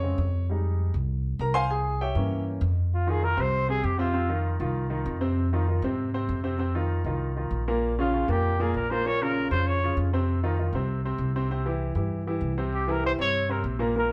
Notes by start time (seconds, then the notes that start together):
Already playing: F2 C3 C#5
0.03 C#3 G#3 C4
0.18 F2
0.49 G3 G#3 D#4
0.94 C2
1.39 C2 A#4 A#5
1.54 C5 F5 G#5 C6
1.70 G#4 G#5
2.01 G4 C#5 E5 G5
2.15 G2 E3 A#3 C#4
2.61 F2
2.94 F4
3.07 D#3 D#4 F4 G#4
3.22 D#3 D#4 F4 A#4
3.37 C2 C3 C4 C5
3.68 C3 C4 G#4 C5
3.84 F2 G4
3.99 C3 C4 F4 C5
4.14 C3 C4 C5
4.29 D#3 D#4 F4
4.60 C2 D#3 D#4 F4
4.90 D#3 D#4 F4
5.06 F2
5.21 C3 C4 C5
5.53 D#3 D#4 F4
5.68 D#3 D#4 F4
5.82 G#2 C3 C4 C5
6.14 C3 C4 C5
6.29 F2
6.44 C3 C4 C5
6.59 C3 C4 C5
6.75 D#3 D#4 F4
7.04 C2 D#3 D#4 F4
7.36 D#3 D#4 F4
7.51 A#1
7.68 A#2 A#3 A#4
7.99 C#3 C#4 F4
8.14 C#3 C#4 F4
8.28 F2 A#2 A#3 G4 A#4
8.60 A#2 A#3 G#4 A#4
8.74 A#1 A#4
8.90 A#2 A#3 A#4 C5
9.06 A#2 A#3 A#4 C#5
9.21 C#3 C#4 F4 A#4
9.51 F2 C#3 C#4 F4 C5
9.67 C#5
9.84 C#3 C#4 F4
9.97 F2
10.13 C3 C4 C5
10.43 D#3 D#4 F4
10.59 D#3 D#4 F4
10.73 C2 C3 C4 C5
11.05 C3 C4 C5
11.18 C2
11.36 C3 C4 C5
11.51 C3 C4 C5
11.66 E3 E4 G4
11.95 G2 E3 E4 G4
12.27 E3 E4 G4
12.41 C2
12.58 C3 C4 C5
12.74 G4
12.88 E3 E4 G4 A#4
13.04 E3 E4 G4 C5
13.18 G2 C3 C4 C#5
13.49 C3 C4 A#4 C5
13.64 A#1
13.79 A#2 A#3 A#4
13.96 A#2 A#3 A#4